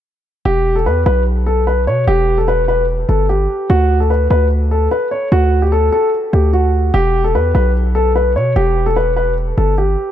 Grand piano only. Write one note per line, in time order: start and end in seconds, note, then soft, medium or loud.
0.45 0.74 G4 loud
0.76 0.84 A4 medium
0.86 1.02 B4 medium
1.06 1.22 B4 medium
1.46 1.63 A4 medium
1.67 1.83 B4 medium
1.87 2.03 C#5 medium
2.08 2.36 G4 loud
2.38 2.46 A4 medium
2.48 2.64 B4 medium
2.68 2.84 B4 medium
3.09 3.25 A4 medium
3.29 3.67 G4 medium
3.70 3.98 F#4 loud
4.00 4.08 A4 medium
4.10 4.26 B4 medium
4.31 4.47 B4 medium
4.71 4.87 A4 medium
4.91 5.07 B4 medium
5.11 5.27 C#5 medium
5.32 5.61 F#4 medium
5.62 5.70 G4 medium
5.72 5.88 A4 medium
5.92 6.08 A4 medium
6.33 6.49 G4 medium
6.53 6.91 F#4 medium
6.94 7.23 G4 loud
7.24 7.32 A4 medium
7.35 7.51 B4 medium
7.55 7.71 B4 medium
7.95 8.11 A4 medium
8.16 8.32 B4 medium
8.36 8.52 C#5 medium
8.56 8.85 G4 loud
8.86 8.94 A4 medium
8.96 9.13 B4 medium
9.16 9.33 B4 medium
9.58 9.74 A4 medium
9.78 10.12 G4 medium